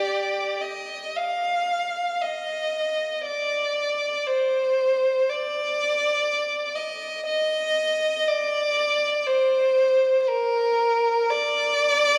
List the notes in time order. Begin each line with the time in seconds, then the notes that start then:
Already playing: G4 D5
0.61 D#5
1.16 F5
2.22 D#5
3.25 D5
4.27 C5
5.30 D5
6.75 D#5
7.26 D#5
8.27 D5
9.27 C5
10.22 C5
10.28 A#4
11.30 D5